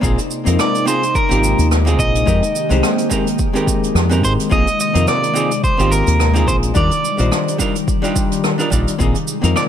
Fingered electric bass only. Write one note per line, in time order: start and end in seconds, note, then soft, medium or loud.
0.03 0.16 A#1 medium
0.47 0.57 F2 medium
1.31 1.53 G#1 medium
1.59 1.99 D#2 medium
1.99 2.22 A#1 medium
2.27 2.40 F2 loud
2.71 2.81 C2 medium
3.95 4.23 F2 loud
4.23 4.36 G#2 medium
4.51 4.64 A#1 medium
4.95 5.05 F2 medium
5.79 6.01 G#1 medium
6.07 6.48 D#2 loud
6.48 6.71 A#1 medium
6.76 6.89 D#2 loud
7.20 7.29 A#1 medium
8.72 8.85 A#1 medium
9.00 9.13 A#1 medium
9.44 9.54 F2 medium